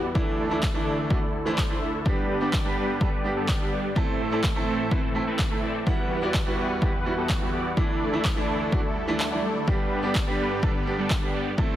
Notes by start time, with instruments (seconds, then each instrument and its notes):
Already playing: supersaw synth E2 E3 G3 B4 F#5
0.14 supersaw synth D2 D3 A3 D4 E4 A4 D5, grand piano E3 A3 D4 E4, kick
0.50 grand piano E3 A3 D4 E4, supersaw synth A3 D4 E4 A4 E5
0.63 kick, clap
0.74 grand piano E3 A3 D4 E4, supersaw synth A3 D4 E4 A4 D5
1.10 grand piano E3 A3 D4 F#4, supersaw synth A3 D4 E4 A4 D5, kick
1.45 grand piano E3 A3 D4 E4, supersaw synth A3 D4 E4 A4 C5
1.58 kick, clap
1.69 grand piano E3 A3 D4 E4
1.82 supersaw synth A3 D4 E4 A4 E5
2.05 supersaw synth G2 G3 B3 D4 G4 B4 D5, grand piano G3 B3 D4 G4, kick
2.41 grand piano G3 B3 D4 G4, supersaw synth G3 B3 D4 G4 D5
2.53 kick, clap
2.64 grand piano G3 B3 D4 G4, supersaw synth G3 B3 D4 G4 B4
3.00 grand piano G3 B3 D4 A4, supersaw synth G3 B3 D4 G4 B4, kick
3.24 grand piano G3 B3 D4 G4
3.37 supersaw synth G3 B3 D4 G4 A4
3.48 kick, clap
3.60 grand piano G3 B3 D4 G4
3.72 supersaw synth G3 B3 D4 G4 D5
3.95 supersaw synth A2 E3 A3 C4 E4 A4 C5 E5, grand piano A3 C4 E4 A4, kick
4.31 grand piano A3 C4 E4 A4, supersaw synth A3 C4 E4 A4 D5
4.44 kick, clap
4.55 grand piano A3 C4 E4 A4, supersaw synth A3 C4 E4 A4 C5
4.91 grand piano A3 C4 E4 B4, supersaw synth A3 C4 E4 A4 C5, kick
5.15 grand piano A3 C4 E4 A4
5.27 supersaw synth A3 C4 E4 A4 B4
5.39 kick, clap
5.50 grand piano A3 C4 E4 A4
5.63 supersaw synth A3 C4 E4 A4 D5
5.86 supersaw synth E2 G3 B3 E4 F#4 G4 B4 F#5, grand piano G3 B3 E4 F#5, kick
6.22 grand piano G3 B3 E4 F#4, supersaw synth B3 E4 F#4 G4 D5
6.34 kick, clap
6.46 grand piano G3 B3 E4 F#4, supersaw synth B3 E4 F#4 G4 B4
6.82 grand piano G3 B3 E4 G4, supersaw synth B3 E4 F#4 G4 B4, kick
7.05 grand piano G3 B3 E4 F#4
7.17 supersaw synth B3 E4 F#4 G4 A4
7.29 kick, clap
7.41 grand piano G3 B3 E4 F#4
7.53 supersaw synth B3 E4 F#4 G4 D5
7.77 supersaw synth D2 D3 A3 D4 E4 A4 D5, grand piano E3 A3 D4 E4, kick
8.12 grand piano E3 A3 D4 E4, supersaw synth A3 D4 E4 A4 E5
8.25 kick, clap
8.36 grand piano E3 A3 D4 E4, supersaw synth A3 D4 E4 A4 D5
8.72 grand piano E3 A3 D4 F#4, supersaw synth A3 D4 E4 A4 D5, kick, swell
9.07 grand piano E3 A3 D4 E4
9.20 supersaw synth A3 D4 E4 A4 F#5, clap
9.31 grand piano E3 A3 D4 E4, supersaw synth A3 D4 E4 A4 D5
9.67 supersaw synth G2 G3 B3 D4 G4 B4 D5, grand piano G3 B3 D4 G4, kick
10.03 grand piano G3 B3 D4 G4, supersaw synth G3 B3 D4 G4 D5
10.15 kick, clap
10.26 grand piano G3 B3 D4 G4, supersaw synth G3 B3 D4 G4 B4
10.62 grand piano G3 B3 D4 A4, supersaw synth G3 B3 D4 G4 B4, kick
10.86 grand piano G3 B3 D4 G4
10.98 supersaw synth G3 B3 D4 G4 A4
11.10 kick, clap
11.21 grand piano G3 B3 D4 G4
11.34 supersaw synth G3 B3 D4 G4 D5
11.57 supersaw synth A2 E3 A3 C4 E4 A4 C5 E5, grand piano A3 C4 E4 A4, kick